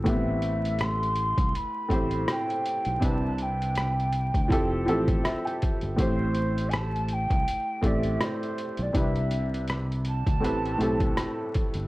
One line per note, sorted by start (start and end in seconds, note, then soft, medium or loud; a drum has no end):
0.04 1.34 A1 medium
0.04 1.10 A2 medium
0.04 1.10 A3 medium
0.04 0.07 B3 soft
0.04 1.11 G4 medium
0.04 kick loud
0.04 closed hi-hat medium
0.08 1.12 B3 medium
0.08 0.84 E5 medium
0.12 1.14 C4 medium
0.42 closed hi-hat medium
0.65 closed hi-hat soft
0.79 1.58 C6 loud
0.79 cross-stick loud
0.79 closed hi-hat medium
1.03 closed hi-hat soft
1.16 closed hi-hat medium
1.38 1.52 C2 medium
1.38 kick loud
1.38 closed hi-hat soft
1.55 2.29 B5 loud
1.55 closed hi-hat medium
1.89 2.24 A1 medium
1.89 2.68 A2 medium
1.89 2.69 A3 medium
1.89 2.69 C4 medium
1.89 2.70 G4 medium
1.89 2.70 C5 medium
1.89 kick medium
1.89 closed hi-hat medium
2.11 closed hi-hat soft
2.28 3.06 G5 loud
2.28 cross-stick loud
2.28 closed hi-hat medium
2.50 closed hi-hat soft
2.66 closed hi-hat medium
2.85 3.01 B1 medium
2.85 closed hi-hat soft
3.00 4.30 C2 loud
3.00 4.06 C3 medium
3.00 4.06 C4 medium
3.00 4.07 D4 medium
3.00 4.07 E4 medium
3.00 kick loud
3.00 closed hi-hat medium
3.04 4.08 B4 medium
3.04 3.44 A5 loud
3.38 4.89 G5 medium
3.38 closed hi-hat medium
3.62 closed hi-hat medium
3.75 cross-stick medium
3.75 closed hi-hat medium
4.00 closed hi-hat soft
4.12 closed hi-hat medium
4.34 4.49 D2 medium
4.34 kick medium
4.34 closed hi-hat soft
4.48 4.84 F1 medium
4.48 4.80 F3 medium
4.48 4.80 C4 medium
4.48 4.81 E4 medium
4.48 4.81 G4 medium
4.48 4.82 A4 loud
4.48 kick loud
4.48 closed hi-hat medium
4.85 5.21 A1 loud
4.85 5.65 F3 medium
4.85 5.65 C4 medium
4.85 5.66 E4 medium
4.85 5.66 G4 medium
4.85 5.67 A4 loud
4.85 closed hi-hat medium
5.08 kick loud
5.08 closed hi-hat medium
5.24 5.44 E5 medium
5.24 cross-stick loud
5.24 closed hi-hat medium
5.45 5.95 G5 medium
5.45 closed hi-hat soft
5.62 kick medium
5.62 closed hi-hat medium
5.81 5.97 G1 medium
5.81 closed hi-hat soft
5.96 7.27 A1 loud
5.96 7.02 A2 medium
5.96 7.03 A3 medium
5.96 7.03 C4 medium
5.96 7.04 G4 medium
5.96 7.04 C5 medium
5.96 kick loud
5.96 closed hi-hat medium
6.01 6.71 C5 loud
6.35 closed hi-hat medium
6.58 closed hi-hat medium
6.69 6.77 G#5 medium
6.69 closed hi-hat medium
6.73 7.14 A5 loud
6.73 cross-stick loud
6.96 closed hi-hat soft
7.08 closed hi-hat medium
7.13 7.88 G5 loud
7.30 7.45 C2 medium
7.30 kick loud
7.30 closed hi-hat soft
7.48 closed hi-hat medium
7.81 8.16 A1 medium
7.81 8.61 A2 medium
7.81 8.62 A3 medium
7.81 8.62 C4 medium
7.81 8.63 G4 medium
7.81 kick medium
7.81 closed hi-hat medium
7.85 8.63 D5 medium
7.85 8.25 E5 medium
8.03 closed hi-hat soft
8.21 8.84 C5 medium
8.21 cross-stick loud
8.21 closed hi-hat medium
8.43 closed hi-hat soft
8.58 closed hi-hat medium
8.77 8.93 B1 medium
8.77 closed hi-hat soft
8.82 8.96 D5 medium
8.93 10.23 C2 loud
8.93 9.99 C3 medium
8.93 9.99 G3 medium
8.93 10.00 D4 medium
8.93 10.00 E4 medium
8.93 10.01 B4 medium
8.93 kick loud
8.93 closed hi-hat medium
8.98 9.66 E5 medium
9.16 closed hi-hat soft
9.31 closed hi-hat medium
9.54 closed hi-hat medium
9.68 cross-stick medium
9.68 closed hi-hat medium
9.92 closed hi-hat soft
10.05 11.51 A5 loud
10.05 closed hi-hat medium
10.27 10.43 D2 medium
10.27 kick medium
10.27 closed hi-hat soft
10.41 10.76 A1 loud
10.41 10.72 A2 medium
10.41 10.73 A3 medium
10.41 10.73 C4 medium
10.41 10.74 G4 medium
10.41 10.74 B4 medium
10.41 closed hi-hat medium
10.65 closed hi-hat soft
10.78 11.13 B1 medium
10.78 11.57 A2 medium
10.78 11.58 A3 medium
10.78 11.58 C4 medium
10.78 11.59 G4 medium
10.78 11.59 A4 medium
10.78 closed hi-hat medium
11.00 kick loud
11.00 closed hi-hat soft
11.17 cross-stick loud
11.17 closed hi-hat medium
11.54 kick medium
11.54 closed hi-hat medium
11.74 11.88 G1 medium
11.74 closed hi-hat soft